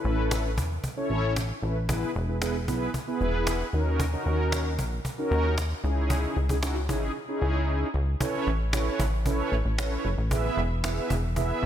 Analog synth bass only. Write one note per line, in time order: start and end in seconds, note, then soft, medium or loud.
0.05 0.59 A1 loud
0.58 0.79 E2 medium
1.10 1.53 A1 medium
1.63 2.05 A1 medium
2.15 2.70 E1 loud
2.68 2.89 B1 medium
3.21 3.63 E1 medium
3.73 4.16 D#2 medium
4.26 4.80 D#2 medium
4.79 5.00 A#1 medium
5.31 5.74 D#2 medium
5.84 6.27 C#2 medium
6.37 6.91 C#2 loud
6.89 7.10 G#1 medium
7.42 7.84 C#2 medium
7.94 8.16 C#2 medium
8.47 8.90 A1 loud
9.00 9.42 A1 medium
9.52 9.63 A1 loud
9.65 9.97 A1 loud
10.05 10.16 F#1 medium
10.18 10.50 A1 medium
10.57 11.00 E1 loud
11.10 11.53 E1 medium
11.63 11.66 E1 loud